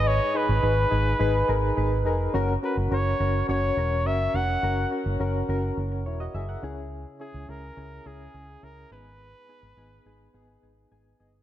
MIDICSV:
0, 0, Header, 1, 4, 480
1, 0, Start_track
1, 0, Tempo, 571429
1, 49, Time_signature, 4, 2, 24, 8
1, 9600, End_track
2, 0, Start_track
2, 0, Title_t, "Flugelhorn"
2, 0, Program_c, 0, 56
2, 62, Note_on_c, 0, 73, 102
2, 306, Note_on_c, 0, 71, 96
2, 319, Note_off_c, 0, 73, 0
2, 1737, Note_off_c, 0, 71, 0
2, 2219, Note_on_c, 0, 71, 72
2, 2325, Note_off_c, 0, 71, 0
2, 2464, Note_on_c, 0, 73, 98
2, 2903, Note_off_c, 0, 73, 0
2, 2938, Note_on_c, 0, 73, 95
2, 3416, Note_on_c, 0, 76, 105
2, 3428, Note_off_c, 0, 73, 0
2, 3657, Note_on_c, 0, 78, 111
2, 3670, Note_off_c, 0, 76, 0
2, 4133, Note_off_c, 0, 78, 0
2, 6054, Note_on_c, 0, 68, 86
2, 6295, Note_on_c, 0, 70, 103
2, 6307, Note_off_c, 0, 68, 0
2, 6775, Note_on_c, 0, 68, 100
2, 6787, Note_off_c, 0, 70, 0
2, 7254, Note_on_c, 0, 70, 110
2, 7267, Note_off_c, 0, 68, 0
2, 7492, Note_off_c, 0, 70, 0
2, 7497, Note_on_c, 0, 71, 124
2, 9139, Note_off_c, 0, 71, 0
2, 9600, End_track
3, 0, Start_track
3, 0, Title_t, "Synth keys"
3, 0, Program_c, 1, 88
3, 0, Control_c, 1, 64, 127
3, 0, Note_on_c, 1, 44, 66
3, 0, Note_on_c, 1, 63, 80
3, 0, Note_on_c, 1, 68, 71
3, 0, Note_on_c, 1, 71, 87
3, 192, Note_off_c, 1, 63, 0
3, 195, Note_off_c, 1, 68, 0
3, 197, Note_off_c, 1, 71, 0
3, 285, Note_on_c, 1, 63, 79
3, 291, Note_on_c, 1, 68, 73
3, 295, Note_on_c, 1, 71, 85
3, 445, Note_off_c, 1, 63, 0
3, 449, Note_off_c, 1, 68, 0
3, 451, Note_off_c, 1, 71, 0
3, 497, Note_off_c, 1, 44, 0
3, 523, Note_on_c, 1, 63, 75
3, 527, Note_on_c, 1, 68, 72
3, 533, Note_on_c, 1, 71, 84
3, 685, Note_off_c, 1, 63, 0
3, 687, Note_off_c, 1, 68, 0
3, 690, Note_off_c, 1, 71, 0
3, 763, Note_on_c, 1, 63, 77
3, 767, Note_on_c, 1, 68, 68
3, 773, Note_on_c, 1, 71, 85
3, 925, Note_off_c, 1, 63, 0
3, 927, Note_off_c, 1, 68, 0
3, 930, Note_off_c, 1, 71, 0
3, 1001, Note_on_c, 1, 63, 113
3, 1007, Note_on_c, 1, 68, 100
3, 1012, Note_on_c, 1, 71, 126
3, 1163, Note_off_c, 1, 63, 0
3, 1167, Note_off_c, 1, 68, 0
3, 1169, Note_off_c, 1, 71, 0
3, 1242, Note_on_c, 1, 63, 86
3, 1247, Note_on_c, 1, 68, 85
3, 1252, Note_on_c, 1, 70, 95
3, 1404, Note_off_c, 1, 63, 0
3, 1406, Note_off_c, 1, 68, 0
3, 1409, Note_off_c, 1, 70, 0
3, 1483, Note_on_c, 1, 63, 84
3, 1487, Note_on_c, 1, 68, 77
3, 1494, Note_on_c, 1, 71, 100
3, 1645, Note_off_c, 1, 63, 0
3, 1647, Note_off_c, 1, 68, 0
3, 1650, Note_off_c, 1, 71, 0
3, 1724, Note_on_c, 1, 63, 88
3, 1729, Note_on_c, 1, 68, 79
3, 1734, Note_on_c, 1, 70, 97
3, 1885, Note_off_c, 1, 63, 0
3, 1887, Note_off_c, 1, 68, 0
3, 1890, Note_off_c, 1, 70, 0
3, 1963, Note_on_c, 1, 61, 113
3, 1968, Note_on_c, 1, 66, 106
3, 1973, Note_on_c, 1, 70, 127
3, 1979, Control_c, 1, 64, 0
3, 2125, Note_off_c, 1, 61, 0
3, 2127, Note_off_c, 1, 66, 0
3, 2130, Note_off_c, 1, 70, 0
3, 2146, Control_c, 1, 64, 127
3, 2205, Note_on_c, 1, 61, 76
3, 2210, Note_on_c, 1, 66, 74
3, 2216, Note_on_c, 1, 70, 87
3, 2365, Note_off_c, 1, 61, 0
3, 2368, Note_off_c, 1, 66, 0
3, 2371, Note_off_c, 1, 70, 0
3, 2443, Note_on_c, 1, 61, 75
3, 2447, Note_on_c, 1, 66, 73
3, 2454, Note_on_c, 1, 70, 84
3, 2605, Note_off_c, 1, 61, 0
3, 2607, Note_off_c, 1, 66, 0
3, 2610, Note_off_c, 1, 70, 0
3, 2684, Note_on_c, 1, 61, 79
3, 2689, Note_on_c, 1, 66, 70
3, 2693, Note_on_c, 1, 70, 85
3, 2845, Note_off_c, 1, 61, 0
3, 2848, Note_off_c, 1, 66, 0
3, 2850, Note_off_c, 1, 70, 0
3, 2925, Note_on_c, 1, 61, 96
3, 2929, Note_on_c, 1, 66, 82
3, 2935, Note_on_c, 1, 73, 106
3, 3086, Note_off_c, 1, 61, 0
3, 3087, Note_off_c, 1, 66, 0
3, 3090, Note_off_c, 1, 73, 0
3, 3165, Note_on_c, 1, 61, 76
3, 3169, Note_on_c, 1, 66, 65
3, 3176, Note_on_c, 1, 70, 87
3, 3325, Note_off_c, 1, 61, 0
3, 3328, Note_off_c, 1, 66, 0
3, 3331, Note_off_c, 1, 70, 0
3, 3404, Note_on_c, 1, 61, 77
3, 3410, Note_on_c, 1, 66, 71
3, 3414, Note_on_c, 1, 70, 86
3, 3565, Note_off_c, 1, 61, 0
3, 3568, Note_off_c, 1, 66, 0
3, 3570, Note_off_c, 1, 70, 0
3, 3645, Note_on_c, 1, 61, 79
3, 3650, Note_on_c, 1, 66, 70
3, 3655, Note_on_c, 1, 70, 85
3, 3806, Note_off_c, 1, 61, 0
3, 3808, Note_off_c, 1, 66, 0
3, 3811, Note_off_c, 1, 70, 0
3, 3884, Note_on_c, 1, 61, 92
3, 3888, Note_on_c, 1, 66, 93
3, 3894, Note_on_c, 1, 70, 112
3, 4045, Note_off_c, 1, 61, 0
3, 4047, Note_off_c, 1, 66, 0
3, 4050, Note_off_c, 1, 70, 0
3, 4123, Note_on_c, 1, 61, 77
3, 4129, Note_on_c, 1, 66, 72
3, 4134, Note_on_c, 1, 70, 82
3, 4285, Note_off_c, 1, 61, 0
3, 4288, Note_off_c, 1, 66, 0
3, 4290, Note_off_c, 1, 70, 0
3, 4364, Note_on_c, 1, 61, 96
3, 4368, Note_on_c, 1, 66, 85
3, 4373, Note_on_c, 1, 70, 101
3, 4525, Note_off_c, 1, 61, 0
3, 4527, Note_off_c, 1, 66, 0
3, 4530, Note_off_c, 1, 70, 0
3, 4606, Note_on_c, 1, 61, 94
3, 4610, Note_on_c, 1, 66, 82
3, 4616, Note_on_c, 1, 70, 106
3, 4766, Note_off_c, 1, 61, 0
3, 4768, Note_off_c, 1, 66, 0
3, 4771, Note_off_c, 1, 70, 0
3, 4970, Note_on_c, 1, 70, 67
3, 4974, Note_on_c, 1, 61, 59
3, 5084, Note_off_c, 1, 70, 0
3, 5086, Note_off_c, 1, 61, 0
3, 5090, Note_on_c, 1, 73, 72
3, 5096, Note_on_c, 1, 64, 64
3, 5203, Note_off_c, 1, 73, 0
3, 5206, Note_off_c, 1, 64, 0
3, 5209, Note_on_c, 1, 75, 78
3, 5215, Note_on_c, 1, 66, 63
3, 5323, Note_off_c, 1, 75, 0
3, 5326, Note_off_c, 1, 66, 0
3, 5329, Note_on_c, 1, 76, 73
3, 5334, Note_on_c, 1, 68, 60
3, 5443, Note_off_c, 1, 76, 0
3, 5446, Note_off_c, 1, 68, 0
3, 5449, Note_on_c, 1, 78, 66
3, 5455, Note_on_c, 1, 70, 57
3, 5565, Note_on_c, 1, 61, 94
3, 5570, Note_on_c, 1, 64, 84
3, 5571, Note_on_c, 1, 49, 80
3, 5576, Note_on_c, 1, 68, 106
3, 5578, Control_c, 1, 64, 0
3, 5677, Note_off_c, 1, 78, 0
3, 5680, Note_off_c, 1, 70, 0
3, 5716, Control_c, 1, 64, 127
3, 5951, Note_off_c, 1, 61, 0
3, 5953, Note_off_c, 1, 64, 0
3, 5956, Note_off_c, 1, 68, 0
3, 6045, Note_on_c, 1, 61, 79
3, 6050, Note_on_c, 1, 64, 71
3, 6056, Note_on_c, 1, 68, 87
3, 6205, Note_off_c, 1, 61, 0
3, 6208, Note_off_c, 1, 64, 0
3, 6211, Note_off_c, 1, 68, 0
3, 6256, Note_off_c, 1, 49, 0
3, 6282, Note_on_c, 1, 61, 75
3, 6288, Note_on_c, 1, 64, 74
3, 6294, Note_on_c, 1, 68, 87
3, 6444, Note_off_c, 1, 61, 0
3, 6447, Note_off_c, 1, 64, 0
3, 6450, Note_off_c, 1, 68, 0
3, 6524, Note_on_c, 1, 61, 78
3, 6529, Note_on_c, 1, 64, 75
3, 6535, Note_on_c, 1, 68, 84
3, 6685, Note_off_c, 1, 61, 0
3, 6688, Note_off_c, 1, 64, 0
3, 6691, Note_off_c, 1, 68, 0
3, 6766, Note_on_c, 1, 61, 92
3, 6770, Note_on_c, 1, 64, 85
3, 6776, Note_on_c, 1, 68, 106
3, 6926, Note_off_c, 1, 61, 0
3, 6928, Note_off_c, 1, 64, 0
3, 6931, Note_off_c, 1, 68, 0
3, 7004, Note_on_c, 1, 61, 78
3, 7009, Note_on_c, 1, 64, 66
3, 7015, Note_on_c, 1, 68, 84
3, 7165, Note_off_c, 1, 61, 0
3, 7168, Note_off_c, 1, 64, 0
3, 7171, Note_off_c, 1, 68, 0
3, 7245, Note_on_c, 1, 61, 75
3, 7249, Note_on_c, 1, 64, 72
3, 7255, Note_on_c, 1, 68, 82
3, 7406, Note_off_c, 1, 61, 0
3, 7408, Note_off_c, 1, 64, 0
3, 7411, Note_off_c, 1, 68, 0
3, 7485, Note_on_c, 1, 59, 80
3, 7489, Note_on_c, 1, 63, 72
3, 7490, Note_on_c, 1, 44, 68
3, 7495, Note_on_c, 1, 68, 90
3, 7498, Control_c, 1, 64, 0
3, 7661, Control_c, 1, 64, 127
3, 7871, Note_off_c, 1, 59, 0
3, 7873, Note_off_c, 1, 63, 0
3, 7876, Note_off_c, 1, 68, 0
3, 7964, Note_on_c, 1, 59, 78
3, 7969, Note_on_c, 1, 63, 72
3, 7975, Note_on_c, 1, 68, 87
3, 8125, Note_off_c, 1, 59, 0
3, 8128, Note_off_c, 1, 63, 0
3, 8130, Note_off_c, 1, 68, 0
3, 8176, Note_off_c, 1, 44, 0
3, 8204, Note_on_c, 1, 59, 90
3, 8209, Note_on_c, 1, 63, 85
3, 8214, Note_on_c, 1, 68, 99
3, 8365, Note_off_c, 1, 59, 0
3, 8368, Note_off_c, 1, 63, 0
3, 8370, Note_off_c, 1, 68, 0
3, 8444, Note_on_c, 1, 59, 89
3, 8450, Note_on_c, 1, 63, 82
3, 8454, Note_on_c, 1, 68, 104
3, 8605, Note_off_c, 1, 59, 0
3, 8608, Note_off_c, 1, 63, 0
3, 8610, Note_off_c, 1, 68, 0
3, 8682, Note_on_c, 1, 59, 110
3, 8687, Note_on_c, 1, 63, 98
3, 8693, Note_on_c, 1, 68, 124
3, 8844, Note_off_c, 1, 59, 0
3, 8847, Note_off_c, 1, 63, 0
3, 8849, Note_off_c, 1, 68, 0
3, 8921, Note_on_c, 1, 59, 90
3, 8927, Note_on_c, 1, 63, 86
3, 8931, Note_on_c, 1, 68, 95
3, 9083, Note_off_c, 1, 59, 0
3, 9087, Note_off_c, 1, 63, 0
3, 9089, Note_off_c, 1, 68, 0
3, 9163, Note_on_c, 1, 59, 87
3, 9168, Note_on_c, 1, 63, 82
3, 9169, Note_on_c, 1, 80, 70
3, 9174, Note_on_c, 1, 68, 93
3, 9325, Note_off_c, 1, 59, 0
3, 9327, Note_off_c, 1, 63, 0
3, 9330, Note_off_c, 1, 68, 0
3, 9392, Note_off_c, 1, 80, 0
3, 9401, Note_on_c, 1, 59, 87
3, 9406, Note_on_c, 1, 63, 80
3, 9406, Note_on_c, 1, 75, 69
3, 9411, Note_on_c, 1, 68, 98
3, 9564, Note_off_c, 1, 59, 0
3, 9566, Note_off_c, 1, 63, 0
3, 9569, Note_off_c, 1, 68, 0
3, 9600, Note_off_c, 1, 75, 0
3, 9600, End_track
4, 0, Start_track
4, 0, Title_t, "Fingered electric bass"
4, 0, Program_c, 2, 33
4, 0, Note_on_c, 2, 32, 107
4, 152, Note_off_c, 2, 32, 0
4, 407, Note_on_c, 2, 32, 98
4, 494, Note_off_c, 2, 32, 0
4, 527, Note_on_c, 2, 32, 97
4, 701, Note_off_c, 2, 32, 0
4, 767, Note_on_c, 2, 32, 95
4, 941, Note_off_c, 2, 32, 0
4, 1007, Note_on_c, 2, 32, 104
4, 1180, Note_off_c, 2, 32, 0
4, 1247, Note_on_c, 2, 32, 93
4, 1420, Note_off_c, 2, 32, 0
4, 1487, Note_on_c, 2, 32, 103
4, 1726, Note_off_c, 2, 32, 0
4, 1726, Note_on_c, 2, 29, 95
4, 1900, Note_off_c, 2, 29, 0
4, 1965, Note_on_c, 2, 30, 107
4, 2139, Note_off_c, 2, 30, 0
4, 2325, Note_on_c, 2, 30, 94
4, 2413, Note_off_c, 2, 30, 0
4, 2444, Note_on_c, 2, 30, 98
4, 2618, Note_off_c, 2, 30, 0
4, 2685, Note_on_c, 2, 30, 98
4, 2859, Note_off_c, 2, 30, 0
4, 2925, Note_on_c, 2, 30, 102
4, 3099, Note_off_c, 2, 30, 0
4, 3164, Note_on_c, 2, 28, 96
4, 3403, Note_off_c, 2, 28, 0
4, 3403, Note_on_c, 2, 30, 109
4, 3578, Note_off_c, 2, 30, 0
4, 3643, Note_on_c, 2, 29, 96
4, 3818, Note_off_c, 2, 29, 0
4, 3885, Note_on_c, 2, 30, 113
4, 4059, Note_off_c, 2, 30, 0
4, 4245, Note_on_c, 2, 30, 93
4, 4333, Note_off_c, 2, 30, 0
4, 4366, Note_on_c, 2, 30, 98
4, 4540, Note_off_c, 2, 30, 0
4, 4606, Note_on_c, 2, 30, 101
4, 4780, Note_off_c, 2, 30, 0
4, 4847, Note_on_c, 2, 30, 114
4, 5085, Note_off_c, 2, 30, 0
4, 5085, Note_on_c, 2, 28, 94
4, 5259, Note_off_c, 2, 28, 0
4, 5325, Note_on_c, 2, 30, 100
4, 5499, Note_off_c, 2, 30, 0
4, 5564, Note_on_c, 2, 37, 94
4, 5911, Note_off_c, 2, 37, 0
4, 6164, Note_on_c, 2, 37, 94
4, 6252, Note_off_c, 2, 37, 0
4, 6285, Note_on_c, 2, 37, 98
4, 6459, Note_off_c, 2, 37, 0
4, 6524, Note_on_c, 2, 37, 100
4, 6699, Note_off_c, 2, 37, 0
4, 6765, Note_on_c, 2, 37, 97
4, 6939, Note_off_c, 2, 37, 0
4, 7004, Note_on_c, 2, 37, 87
4, 7178, Note_off_c, 2, 37, 0
4, 7245, Note_on_c, 2, 37, 106
4, 7419, Note_off_c, 2, 37, 0
4, 7483, Note_on_c, 2, 32, 104
4, 7830, Note_off_c, 2, 32, 0
4, 8083, Note_on_c, 2, 32, 99
4, 8172, Note_off_c, 2, 32, 0
4, 8204, Note_on_c, 2, 32, 110
4, 8378, Note_off_c, 2, 32, 0
4, 8444, Note_on_c, 2, 32, 95
4, 8619, Note_off_c, 2, 32, 0
4, 8684, Note_on_c, 2, 32, 113
4, 8858, Note_off_c, 2, 32, 0
4, 8927, Note_on_c, 2, 32, 92
4, 9100, Note_off_c, 2, 32, 0
4, 9164, Note_on_c, 2, 32, 100
4, 9339, Note_off_c, 2, 32, 0
4, 9406, Note_on_c, 2, 31, 103
4, 9580, Note_off_c, 2, 31, 0
4, 9600, End_track
0, 0, End_of_file